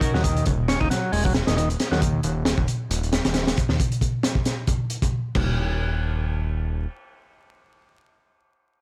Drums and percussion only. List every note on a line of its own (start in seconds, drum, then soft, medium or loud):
0.01 kick loud
0.01 closed hi-hat medium
0.14 snare medium
0.24 kick loud
0.24 closed hi-hat loud
0.36 closed hi-hat soft
0.45 kick loud
0.45 closed hi-hat medium
0.68 snare loud
0.68 closed hi-hat medium
0.81 kick loud
0.91 snare medium
0.91 closed hi-hat medium
1.13 open hi-hat medium
1.25 kick loud
1.35 snare loud
1.35 closed hi-hat medium
1.47 snare loud
1.47 closed hi-hat medium
1.58 closed hi-hat medium
1.70 closed hi-hat soft
1.80 snare medium
1.80 closed hi-hat medium
1.92 snare soft
2.02 kick loud
2.02 closed hi-hat loud
2.23 closed hi-hat medium
2.45 snare loud
2.45 closed hi-hat medium
2.58 kick loud
2.68 closed hi-hat medium
2.91 closed hi-hat medium
3.03 closed hi-hat soft
3.13 snare loud
3.13 closed hi-hat medium
3.25 snare loud
3.25 closed hi-hat medium
3.34 snare loud
3.34 closed hi-hat medium
3.47 snare loud
3.47 closed hi-hat medium
3.57 kick loud
3.57 closed hi-hat medium
3.69 snare medium
3.80 kick loud
3.80 closed hi-hat medium
3.92 closed hi-hat soft
4.01 kick medium
4.01 closed hi-hat medium
4.23 snare loud
4.23 closed hi-hat loud
4.35 kick medium
4.45 snare medium
4.45 closed hi-hat medium
4.67 kick loud
4.67 closed hi-hat medium
4.90 closed hi-hat medium
5.02 kick loud
5.02 closed hi-hat medium
5.35 kick loud
5.35 crash medium